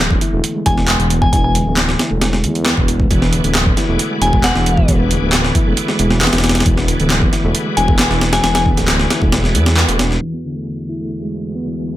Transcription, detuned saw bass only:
0.00 0.18 D1 medium
0.33 0.41 E1 loud
0.66 0.95 E1 medium
0.99 1.29 E1 loud
1.33 1.62 E1 loud
1.66 1.95 D1 medium
2.11 2.45 E1 loud
2.44 2.73 E2 loud
2.78 3.07 E1 medium
3.11 3.40 E1 loud
3.44 3.73 D1 medium
3.88 3.97 E1 loud
4.21 4.51 E1 medium
4.55 4.84 E1 loud
4.88 5.18 E1 loud
5.22 5.51 D1 medium
5.66 5.75 E1 loud
5.99 6.29 E1 medium
6.33 6.62 E1 loud
6.66 6.95 E1 loud
6.99 7.29 D1 medium
7.44 7.52 E1 loud
7.77 8.07 E1 medium
8.10 8.40 E1 loud
8.44 8.73 E1 loud
8.77 9.06 D1 medium
9.22 9.56 E1 loud
9.55 9.84 E2 loud
9.88 10.17 E1 medium

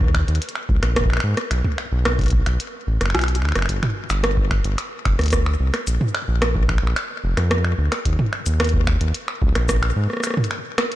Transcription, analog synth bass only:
0.00 0.24 D#2 loud
0.28 0.39 D#2 loud
0.69 0.80 C#2 medium
0.83 1.19 A#1 loud
1.24 1.35 G#2 medium
1.51 1.62 B1 loud
1.92 2.42 B1 loud
2.46 2.57 B1 loud
2.87 2.98 A1 medium
3.01 3.14 F#1 loud
3.14 3.43 B1 medium
3.42 3.53 D2 medium
3.55 3.66 F#1 loud
3.69 3.80 G1 loud
4.10 4.60 G1 loud
4.64 4.76 G1 loud
5.05 5.16 F1 medium
5.19 5.56 D2 loud
5.60 5.71 C2 loud
5.87 5.98 A#1 loud
6.28 6.79 A#1 loud
6.83 6.94 A#1 loud
7.24 7.35 F1 medium
7.37 7.74 F2 loud
7.78 7.89 D2 medium
8.05 8.16 D#2 loud
8.46 8.97 D#2 loud
9.01 9.12 D#2 medium
9.42 9.53 C#2 loud
9.55 9.92 A#1 loud
9.96 10.07 G#2 medium

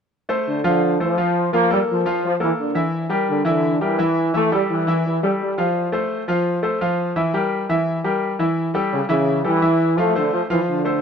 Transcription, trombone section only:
0.47 0.64 D3 medium
0.66 0.98 D3 medium
1.01 1.50 F3 medium
1.53 1.69 A#3 loud
1.72 1.80 G3 medium
1.91 2.22 F3 medium
2.25 2.33 F3 medium
2.42 2.50 E3 medium
2.59 2.83 D3 medium
3.29 3.45 D3 medium
3.46 3.79 D3 medium
3.82 4.35 E3 loud
4.35 4.51 A3 loud
4.53 4.61 G3 medium
4.70 5.03 E3 medium
5.06 5.22 E3 medium
5.23 5.31 G3 medium
5.41 5.65 G3 medium
8.93 9.01 C#3 medium
9.10 9.43 C#3 medium
9.45 9.94 E3 loud
9.97 10.15 A3 loud
10.16 10.32 D3 medium
10.33 10.41 F3 medium
10.51 10.59 E3 medium
10.69 11.02 D3 medium

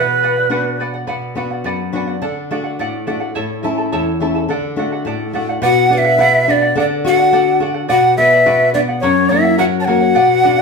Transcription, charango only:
0.00 0.21 B4 medium
0.00 0.22 D5 medium
0.00 0.22 F#5 medium
0.23 0.37 B4 medium
0.23 0.37 D5 medium
0.23 0.35 F#5 medium
0.37 0.50 D5 soft
0.37 0.50 F#5 soft
0.51 0.79 B4 medium
0.51 0.79 D5 medium
0.51 0.79 F#5 medium
0.80 0.94 B4 medium
0.80 0.94 D5 medium
0.80 0.93 F#5 medium
0.94 1.06 D5 soft
0.94 1.07 F#5 medium
1.07 1.35 B4 medium
1.07 1.36 D5 medium
1.07 1.36 F#5 medium
1.36 1.50 B4 medium
1.36 1.51 D5 medium
1.36 1.50 F#5 medium
1.51 1.64 D5 soft
1.51 1.65 F#5 medium
1.65 1.93 B4 medium
1.65 1.94 D5 medium
1.65 1.94 F#5 medium
1.94 2.08 B4 medium
1.94 2.08 D5 medium
1.94 2.06 F#5 medium
2.07 2.21 D5 soft
2.07 2.21 F#5 soft
2.22 2.50 A4 medium
2.22 2.50 D5 medium
2.22 2.50 F#5 medium
2.51 2.65 A4 medium
2.51 2.65 D5 medium
2.51 2.63 F#5 medium
2.64 2.79 D5 soft
2.64 2.78 F#5 medium
2.79 3.06 A4 medium
2.79 3.06 D5 medium
2.79 3.07 F#5 medium
3.07 3.21 A4 medium
3.07 3.21 D5 medium
3.07 3.19 F#5 medium
3.20 3.36 D5 soft
3.20 3.35 F#5 soft
3.35 3.62 E4 medium
3.35 3.63 A4 medium
3.35 3.63 C#5 medium
3.35 3.61 E5 medium
3.35 3.63 A5 medium
3.63 3.78 E4 medium
3.63 3.78 A4 medium
3.63 3.77 E5 medium
3.63 3.77 A5 medium
3.78 3.92 E4 soft
3.78 3.92 A4 soft
3.78 3.92 A5 medium
3.92 4.20 E4 medium
3.92 4.20 A4 medium
3.92 4.21 C#5 medium
3.92 4.19 E5 medium
3.92 4.21 A5 medium
4.20 4.35 E4 medium
4.20 4.34 A4 medium
4.20 4.35 E5 medium
4.20 4.34 A5 medium
4.35 4.50 E4 soft
4.35 4.48 A4 soft
4.35 4.49 A5 soft
4.50 4.76 A4 medium
4.50 4.77 D5 medium
4.50 4.78 F#5 medium
4.78 4.92 A4 medium
4.78 4.92 D5 medium
4.78 4.91 F#5 medium
4.92 5.06 D5 soft
4.92 5.06 F#5 medium
5.06 5.33 A4 medium
5.06 5.34 D5 medium
5.06 5.34 F#5 medium
5.34 5.48 A4 medium
5.34 5.49 D5 medium
5.34 5.48 F#5 medium
5.49 5.61 D5 soft
5.49 5.61 F#5 soft
5.62 5.90 B4 medium
5.62 5.90 D5 medium
5.62 5.91 F#5 medium
5.91 6.05 B4 medium
5.91 6.05 D5 medium
5.91 6.03 F#5 medium
6.05 6.19 D5 soft
6.05 6.19 F#5 medium
6.20 6.47 B4 medium
6.20 6.47 D5 medium
6.20 6.48 F#5 medium
6.48 6.62 B4 medium
6.48 6.62 D5 medium
6.48 6.61 F#5 medium
6.62 6.76 D5 soft
6.62 6.76 F#5 soft
6.77 7.04 A4 medium
6.77 7.05 D5 medium
6.77 7.05 F#5 medium
7.05 7.18 A4 medium
7.05 7.18 D5 medium
7.05 7.16 F#5 medium
7.18 7.32 D5 soft
7.18 7.32 F#5 medium
7.33 7.59 A4 medium
7.33 7.61 D5 medium
7.33 7.61 F#5 loud
7.60 7.75 A4 medium
7.60 7.74 D5 medium
7.60 7.73 F#5 medium
7.74 7.87 D5 soft
7.74 7.88 F#5 medium
7.88 8.16 B4 medium
7.88 8.17 D5 medium
7.88 8.18 F#5 medium
8.18 8.32 B4 medium
8.18 8.32 D5 medium
8.18 8.31 F#5 medium
8.32 8.45 D5 soft
8.32 8.45 F#5 medium
8.46 8.74 B4 medium
8.46 8.75 D5 medium
8.46 8.75 F#5 medium
8.75 8.89 B4 medium
8.75 8.89 D5 medium
8.75 8.87 F#5 medium
8.89 9.03 D5 soft
8.89 9.03 F#5 medium
9.03 9.29 A#4 medium
9.03 9.30 C#5 medium
9.03 9.30 F#5 medium
9.30 9.45 A#4 medium
9.30 9.44 C#5 medium
9.30 9.42 F#5 medium
9.44 9.57 C#5 soft
9.44 9.58 F#5 medium
9.58 9.86 A#4 medium
9.58 9.86 C#5 medium
9.58 9.87 F#5 medium
9.87 10.02 A#4 medium
9.87 10.01 C#5 medium
9.87 9.99 F#5 medium
10.00 10.16 C#5 soft
10.00 10.14 F#5 medium
10.15 10.41 B4 medium
10.15 10.42 D5 medium
10.15 10.43 F#5 medium
10.43 10.58 B4 medium
10.43 10.57 D5 medium
10.43 10.56 F#5 medium
10.57 10.62 D5 soft
10.57 10.62 F#5 medium

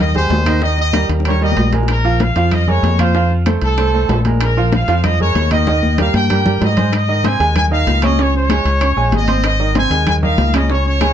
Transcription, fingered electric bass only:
0.00 0.27 D#2 loud
0.30 1.04 D#2 medium
1.09 1.53 D#2 loud
1.57 2.30 A#1 loud
2.36 2.80 F2 medium
2.83 3.56 F2 loud
3.62 4.06 C2 medium
4.09 4.82 A#1 loud
4.88 5.32 F2 loud
5.35 6.08 D#2 medium
6.14 6.58 G2 medium
6.61 7.34 G#2 loud
7.40 7.84 D#2 medium
7.87 8.60 C#2 medium
8.65 8.94 C#2 medium
8.96 9.11 A#1 medium
9.12 9.85 G#1 loud
9.90 10.34 D#2 loud
10.38 11.11 C#2 loud

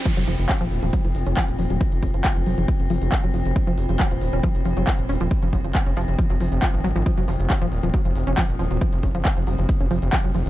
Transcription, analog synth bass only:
0.17 0.25 F1 medium
0.27 0.36 F1 loud
0.39 0.46 F1 medium
0.61 0.68 D#1 medium
0.71 0.80 D#1 medium
0.83 0.90 D#1 medium
1.05 1.12 F1 medium
1.15 1.23 F1 loud
1.26 1.34 F1 medium
1.48 1.56 D#1 medium
1.59 1.67 D#1 medium
1.70 1.78 D#1 medium
1.92 2.00 F1 medium
2.03 2.11 F1 loud
2.14 2.22 F#1 medium
2.36 2.44 F1 medium
2.46 2.55 F1 medium
2.58 2.65 F1 medium
2.80 2.87 F1 medium
2.90 2.99 F1 loud
3.02 3.09 F1 medium
3.24 3.31 F1 medium
3.34 3.42 F1 medium
3.46 3.53 F1 medium
3.68 3.75 F1 medium
3.78 3.86 F1 loud
3.89 3.97 F1 medium
4.11 4.19 D#1 medium
4.22 4.30 D#1 loud
4.33 4.41 D#1 medium
4.55 4.63 F1 medium
4.65 4.74 F1 loud
4.77 4.84 F1 medium
4.99 5.06 D#1 medium
5.09 5.18 D#1 loud
5.21 5.28 D#1 loud
5.42 5.50 F1 medium
5.53 5.61 F1 loud
5.64 5.72 F#1 medium
5.86 5.94 F1 medium
5.97 6.05 F1 medium
6.08 6.16 F1 medium
6.30 6.38 F1 medium
6.40 6.49 F1 loud
6.52 6.60 F1 medium
6.74 6.81 G#1 medium
6.84 6.93 G#1 loud
6.96 7.03 G#1 medium
7.18 7.25 F1 medium
7.28 7.36 F1 loud
7.39 7.47 F1 medium
7.61 7.69 D#1 medium
7.72 7.80 D#1 loud
7.83 7.91 D#1 loud
8.05 8.13 F1 medium
8.16 8.24 F1 loud
8.27 8.35 F1 medium
8.49 8.57 D#1 medium
8.59 8.68 D#1 loud
8.71 8.79 D#1 medium
8.93 9.00 F1 medium
9.03 9.12 F1 loud
9.15 9.22 F#1 medium
9.37 9.44 F1 medium
9.47 9.55 F1 medium
9.59 9.66 F1 loud
9.81 9.88 F1 medium
9.91 9.99 F1 loud
10.02 10.10 F1 medium
10.24 10.32 F1 medium
10.35 10.43 F1 medium
10.46 10.50 F1 medium

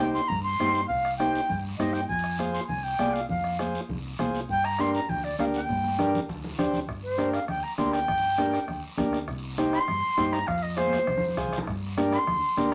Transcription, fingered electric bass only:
0.00 0.18 C2 loud
0.30 0.54 G2 loud
0.60 0.84 G2 medium
0.90 1.38 C2 medium
1.50 1.74 G2 medium
1.79 2.04 G2 medium
2.09 2.57 F2 loud
2.69 2.93 C2 medium
2.99 3.24 C2 medium
3.29 3.77 F2 loud
3.89 4.13 C2 medium
4.20 4.44 C2 medium
4.49 4.97 G2 medium
5.09 5.33 D2 loud
5.39 5.63 D2 medium
5.69 6.17 G2 medium
6.29 6.53 D2 loud
6.58 6.82 D2 medium
6.89 7.37 G1 medium
7.49 7.61 D2 medium
7.78 8.02 D2 medium
8.08 8.56 G1 medium
8.69 8.81 D2 medium
8.98 9.22 D2 medium
9.28 9.76 C2 loud
9.88 10.00 G2 medium
10.18 10.42 G2 medium
10.48 10.96 F2 loud
11.08 11.20 C2 medium
11.38 11.62 C2 medium
11.68 12.16 G2 medium
12.28 12.40 D2 medium
12.58 12.74 D2 medium

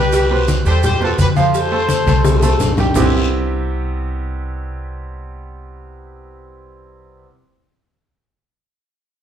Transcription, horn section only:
0.00 0.45 G4 medium
0.00 0.44 B4 loud
0.67 0.83 A4 medium
0.67 0.83 C5 loud
0.84 1.00 G4 medium
0.84 1.00 C5 loud
1.04 1.11 F4 medium
1.04 1.11 A4 loud
1.21 1.29 G4 medium
1.21 1.29 B4 loud
1.40 2.58 A4 medium
1.40 2.58 C5 loud

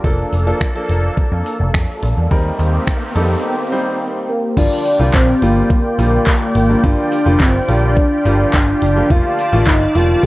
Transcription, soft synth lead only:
4.29 4.55 A#3 medium
4.57 5.15 D4 loud
5.14 5.44 C4 medium
5.42 6.55 A#3 loud
6.55 6.85 A#3 medium
6.84 7.42 D4 loud
7.40 7.70 C4 loud
7.69 8.81 D4 loud
8.82 9.12 D4 loud
9.10 9.66 F4 loud
9.67 9.97 D#4 loud
9.95 10.25 F4 loud

